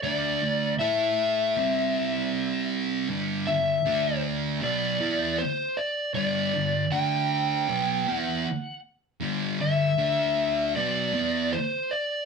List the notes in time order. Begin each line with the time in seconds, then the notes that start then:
0.03 D3 A3 D4 D5
0.43 D3 A3
0.79 A3 E4 A4 E5
1.56 C3 G3 C4
3.09 G2 D3 G3
3.47 G2 D3 E5
3.85 D3 A3 D4
4.62 B2 F#3 B3 D5
5.00 E3 B3 E4
5.39 C5
5.77 D5
6.14 G2 D3 G3 D5
6.54 G2 D3
6.91 D3 A3 D4 G5
7.69 B2 F#3 B3
8.07 E3 B3 E4
8.12 F#5
9.21 G2 D3 G3
9.60 G2 D3 E5
9.98 D3 A3 D4
10.75 B2 F#3 B3 D5
11.13 E3 B3 E4
11.53 C5
11.91 D5